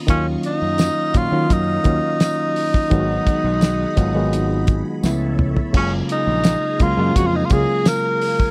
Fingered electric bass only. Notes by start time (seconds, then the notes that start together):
0.09 D#2
0.62 F#2
1.15 A#2
1.32 D#3
1.51 F#2
1.85 D#2
2.91 G#1
3.44 B1
3.97 G#1
5.04 C#2
5.74 F#1
6.27 A#1
6.80 C#2
6.98 F#2
7.16 F2
7.51 C#2